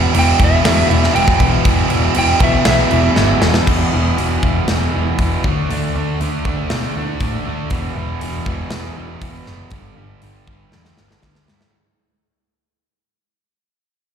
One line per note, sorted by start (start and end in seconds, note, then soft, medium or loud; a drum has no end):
0.00 0.15 E2 medium
0.00 0.15 B2 loud
0.00 0.16 E3 loud
0.14 0.30 E1 loud
0.14 0.41 E2 medium
0.14 0.41 B2 medium
0.14 0.42 E3 loud
0.14 crash medium
0.19 0.40 G5 loud
0.40 0.55 E1 medium
0.40 0.66 E2 loud
0.40 0.66 B2 loud
0.40 0.67 E3 loud
0.40 kick medium
0.40 crash medium
0.44 0.89 E5 loud
0.65 0.81 E1 loud
0.65 0.91 E2 medium
0.65 0.92 B2 loud
0.65 0.93 E3 loud
0.65 snare loud
0.65 crash medium
0.90 1.06 E1 loud
0.90 1.16 E2 medium
0.90 1.16 B2 loud
0.90 1.17 E3 loud
0.90 1.13 E5 medium
0.90 crash medium
1.04 snare soft
1.15 1.31 E1 loud
1.15 1.42 E2 medium
1.15 1.41 B2 loud
1.15 1.43 E3 loud
1.15 1.50 G5 medium
1.15 crash medium
1.28 kick medium
1.40 1.56 B1 medium
1.40 1.66 E2 medium
1.40 1.65 B2 loud
1.40 1.67 E3 loud
1.40 kick medium
1.40 crash medium
1.65 1.81 E1 loud
1.65 1.91 E2 loud
1.65 1.92 B2 loud
1.65 1.92 E3 loud
1.65 kick loud
1.65 crash medium
1.90 2.06 E1 medium
1.90 2.15 E2 medium
1.90 2.16 B2 medium
1.90 2.17 E3 medium
1.90 crash medium
2.14 2.32 E1 loud
2.14 2.41 E2 medium
2.14 2.42 B2 medium
2.14 2.43 E3 loud
2.14 crash medium
2.19 2.43 G5 loud
2.40 2.56 B1 medium
2.40 2.66 E2 loud
2.40 2.68 B2 loud
2.40 2.67 E5 loud
2.40 kick medium
2.40 crash medium
2.44 2.68 E3 loud
2.65 2.82 B1 loud
2.65 2.91 E2 medium
2.65 2.92 B2 medium
2.65 2.92 E3 medium
2.65 3.39 E5 medium
2.65 snare loud
2.65 crash medium
2.91 3.07 E1 medium
2.91 3.17 E2 medium
2.91 3.18 B2 medium
2.91 3.18 E3 loud
2.91 crash medium
3.16 3.32 G1 loud
3.16 3.42 E2 medium
3.16 3.43 B2 medium
3.16 3.44 E3 medium
3.16 snare medium
3.42 3.58 E1 medium
3.42 3.66 E2 medium
3.42 3.67 B2 medium
3.42 3.67 E3 loud
3.42 snare loud
3.54 snare loud
3.67 3.84 E1 medium
3.67 3.93 E2 medium
3.67 3.95 B2 loud
3.67 3.95 E3 loud
3.67 kick loud
3.67 crash loud
3.94 4.10 E1 medium
3.94 4.19 E2 medium
3.94 4.19 B2 medium
3.94 4.20 E3 medium
4.18 4.36 E1 medium
4.18 4.44 E2 medium
4.18 4.45 B2 loud
4.18 4.46 E3 medium
4.18 open hi-hat medium
4.43 4.59 E1 medium
4.43 4.69 E2 medium
4.43 4.70 B2 medium
4.43 kick medium
4.47 4.70 E3 medium
4.68 4.86 E1 medium
4.68 4.93 E2 loud
4.68 4.94 B2 loud
4.68 4.95 E3 loud
4.68 snare loud
4.68 open hi-hat medium
4.94 5.11 E1 medium
4.94 5.18 E2 medium
4.94 5.19 B2 medium
4.94 5.20 E3 medium
5.18 5.35 E1 loud
5.18 5.43 E2 medium
5.18 5.43 B2 medium
5.18 5.43 E3 loud
5.18 kick medium
5.18 open hi-hat medium
5.44 5.61 D2 medium
5.44 5.70 D3 medium
5.44 5.70 A3 loud
5.44 5.71 D4 loud
5.44 kick loud
5.70 5.86 D2 medium
5.70 5.95 D3 medium
5.70 5.96 A3 medium
5.70 5.97 D4 medium
5.70 open hi-hat soft
5.95 6.11 D2 medium
5.95 6.20 D3 medium
5.95 6.21 A3 medium
5.95 6.22 D4 medium
6.20 6.36 D2 medium
6.20 6.45 D3 medium
6.20 6.46 A3 loud
6.20 6.47 D4 loud
6.20 open hi-hat soft
6.45 6.62 D2 medium
6.45 6.71 D3 medium
6.45 6.71 A3 medium
6.45 6.72 D4 medium
6.45 kick medium
6.70 6.88 B2 medium
6.70 6.96 D3 medium
6.70 6.97 A3 medium
6.70 6.98 D4 medium
6.70 snare loud
6.70 open hi-hat soft
6.96 7.12 D2 medium
6.96 7.22 D3 medium
6.96 7.22 A3 medium
6.96 7.23 D4 medium
7.20 7.37 A2 medium
7.20 7.46 D3 medium
7.20 7.47 A3 medium
7.20 kick medium
7.20 open hi-hat soft
7.24 7.47 D4 medium
7.47 7.63 D2 medium
7.47 7.70 D3 medium
7.47 7.70 A3 medium
7.47 7.71 D4 loud
7.70 7.87 E1 medium
7.70 7.96 E2 loud
7.70 7.97 B2 loud
7.70 7.98 E3 loud
7.70 kick loud
7.70 open hi-hat soft
7.98 8.14 E1 medium
7.98 8.20 E2 medium
7.98 8.21 B2 medium
7.98 8.22 E3 medium
8.21 8.38 E1 medium
8.21 8.46 E2 medium
8.21 8.46 B2 loud
8.21 8.47 E3 loud
8.21 open hi-hat soft
8.46 8.63 E1 medium
8.46 8.71 E2 medium
8.46 8.71 B2 medium
8.46 8.72 E3 medium
8.46 kick medium
8.70 8.89 E1 medium
8.70 8.96 E2 medium
8.70 8.97 B2 medium
8.70 8.97 E3 loud
8.70 snare loud
8.70 open hi-hat medium
8.97 9.14 E1 medium
8.97 9.21 E2 medium
8.97 9.22 B2 medium
8.97 9.22 E3 medium
9.21 9.38 E1 loud
9.21 9.45 E2 medium
9.21 9.46 B2 medium
9.21 9.46 E3 loud
9.21 kick medium
9.21 open hi-hat medium
9.46 9.64 F#1 medium
9.46 9.71 E2 medium
9.46 9.71 B2 medium
9.46 9.71 E3 medium
9.46 snare soft
9.70 9.89 G1 medium
9.70 9.96 G2 medium
9.70 9.97 D3 medium
9.70 9.97 G3 medium
9.70 kick loud
9.70 open hi-hat soft
9.97 10.14 G1 medium
9.97 10.21 G2 medium
9.97 10.22 D3 medium
9.97 10.23 G3 medium
10.22 10.40 G1 medium
10.22 10.48 G2 medium
10.22 10.49 D3 medium
10.22 10.49 G3 loud
10.22 open hi-hat soft
10.47 10.64 G1 medium
10.47 10.72 G2 medium
10.47 10.73 D3 medium
10.47 10.73 G3 medium
10.47 kick medium
10.72 10.91 E2 medium
10.72 10.98 G2 medium
10.72 10.98 D3 medium
10.72 10.99 G3 medium
10.72 snare medium
10.85 snare soft
10.98 11.16 G1 medium
10.98 11.22 G2 medium
10.98 11.23 D3 medium
10.98 11.24 G3 medium
10.98 snare medium
11.11 snare medium
11.23 11.40 D2 medium
11.23 11.48 G2 medium
11.23 11.49 D3 medium
11.23 11.50 G3 loud
11.23 kick medium
11.23 snare medium
11.35 snare medium
11.48 11.66 G2 medium
11.48 11.73 G2 medium
11.48 11.73 D3 medium
11.48 11.74 G3 medium
11.48 snare medium
11.61 snare medium